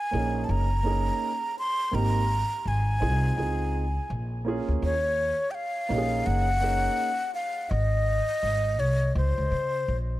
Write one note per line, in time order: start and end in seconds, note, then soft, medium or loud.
0.00 0.46 G#5 medium
0.11 0.43 A#1 medium
0.11 0.66 A#3 medium
0.11 0.66 C#4 medium
0.11 0.67 D#4 medium
0.11 0.68 G#4 medium
0.44 0.52 A5 medium
0.49 1.08 F#1 medium
0.49 1.58 A#5 medium
0.83 1.29 A#3 medium
0.83 1.30 C#4 medium
0.83 1.30 D#4 medium
0.83 1.31 G#4 medium
1.59 1.96 C6 loud
1.91 2.41 G#1 medium
1.91 2.20 A#3 medium
1.91 2.20 C4 medium
1.91 2.21 D#4 medium
1.91 2.22 G4 medium
1.91 2.69 A#5 loud
2.65 3.03 G#1 medium
2.65 4.11 G#5 medium
3.00 3.31 C2 loud
3.00 3.35 C4 medium
3.00 3.36 D#4 medium
3.00 3.37 F4 medium
3.00 3.38 G#4 medium
3.36 3.97 C#2 medium
3.36 3.82 C4 medium
3.36 3.82 D#4 medium
3.36 3.83 F4 medium
3.36 3.84 G#4 medium
4.10 4.58 A#1 loud
4.45 4.90 A#3 medium
4.45 4.91 C#4 medium
4.45 4.92 F4 medium
4.45 4.92 G#4 medium
4.68 4.80 D2 medium
4.82 5.31 D#2 medium
4.82 5.52 C#5 loud
5.51 6.28 F5 medium
5.51 5.56 G5 medium
5.89 6.20 A#1 medium
5.89 6.44 A#3 medium
5.89 6.44 C#4 medium
5.89 6.45 D#4 medium
5.89 5.99 G4 medium
5.98 6.49 G#4 medium
6.26 6.86 F#1 medium
6.26 7.34 F#5 loud
6.61 7.07 A#3 medium
6.61 7.08 C#4 medium
6.61 7.08 D#4 medium
6.61 7.09 G#4 medium
7.34 7.71 F5 medium
7.70 8.20 G#1 loud
7.70 8.81 D#5 loud
8.43 8.80 G#1 medium
8.79 9.10 C2 medium
8.79 9.16 C#5 medium
9.15 9.34 C#2 loud
9.15 9.97 C5 medium
9.38 9.49 C#2 medium
9.51 9.82 C#3 medium
9.88 10.18 A#1 medium